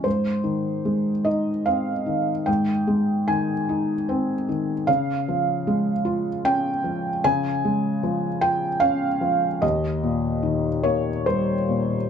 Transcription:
X:1
M:3/4
L:1/8
Q:1/4=75
K:Ab
V:1 name="Felt piano"
c3 e f2 | g2 a3 z | f4 g2 | a3 g f2 |
e3 d c2 |]
V:2 name="Felt piano" clef=bass
A,, E, A, E C E, | A,, A, E, E C E, | D, F, A, F D F, | D, A, F, F D F, |
E,, B,, E, B, G, B,, |]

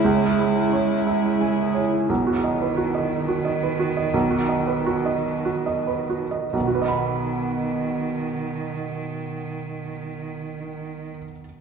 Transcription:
X:1
M:6/8
L:1/16
Q:3/8=50
K:B
V:1 name="Felt piano"
[C,,c]2 E2 c2 e2 g2 c2 | B,,, F d B F d2 F d B F d | B,,, F d B F d2 F d B F d | [B,,,B,,FBdb]12- |
[B,,,B,,FBdb]12 |]
V:2 name="Ambient pad"
[EGc]12 | z12 | z12 | z12 |
z12 |]
V:3 name="Harp"
[CEGc] G E c C3 c C G E E | z12 | z12 | z12 |
z12 |]
V:4 name="Violin"
E8- E2 z2 | z12 | z12 | z12 |
z12 |]
V:5 name="Cello" clef=bass
G,8- G,2 z2 | D,12- | D,8- D,2 z2 | D,12- |
D,12 |]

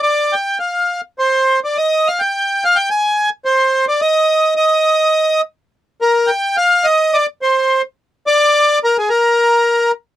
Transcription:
X:1
M:2/4
L:1/16
Q:"Swing" 1/4=106
K:Eb
V:1 name="Accordion"
d2 g2 f3 z | c3 d e2 f g- | g2 f g a3 z | c3 d e4 |
e6 z2 | z2 B2 g2 f2 | e2 d2 c3 z | z2 d4 B A |
B6 z2 |]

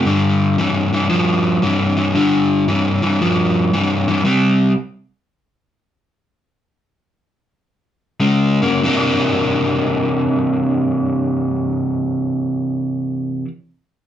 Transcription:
X:1
M:4/4
L:1/8
Q:"Swing" 1/4=107
K:Cmix
V:1 name="Overdriven electric guitar" clef=bass
[G,,D,]2 [G,,E,] [G,,E,] [G,,F,]2 [G,,E,] [G,,E,] | [G,,D,]2 [G,,E,] [G,,E,] [G,,F,]2 [G,,E,] [G,,E,] | [C,G,]2 z6 | z6 [_D,_A,] [D,B,] |
[C,E,B,D]8- | [C,E,B,D]8 |]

